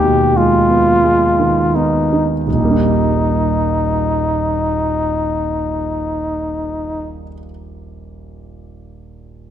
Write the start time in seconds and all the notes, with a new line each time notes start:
Already playing: D#2 D#3 G#3 B3 D#4 G4
0.04 B2
0.37 G#3 F4
0.70 B3
1.04 G#3
1.40 D#3
1.75 B3 D#4
2.13 D#4
2.44 D#1 D#4
2.53 A#1
2.59 G3
2.65 A#3
2.71 D#4
2.77 G4